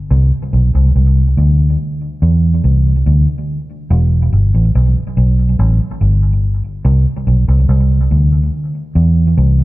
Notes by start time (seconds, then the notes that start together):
0.11 C2
0.53 B1
0.75 C2
0.96 C2
1.37 D2
2.22 E2
2.64 C2
3.06 D2
3.90 E1
4.32 G1
4.54 A1
4.75 B1
5.17 B1
5.59 A1
6.01 G1
6.85 C2
7.27 B1
7.48 C2
7.69 C2
8.11 D2
8.95 E2
9.37 C2